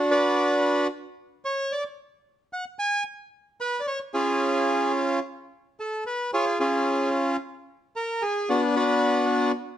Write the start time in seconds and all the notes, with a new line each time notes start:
Already playing: D4 F#4
0.11 F#4 B4 D5
1.45 C#5
1.72 D5
2.53 F#5
2.79 G#5
3.61 B4
3.80 D5
3.87 C#5
4.14 C#4 F4 G#4
5.80 A4
6.06 B4
6.33 F4 G#4 C#5
6.60 C#4 F4 G#4
7.96 A#4
8.22 G#4
8.49 B3 D4 F#4
8.76 D4 F#4 B4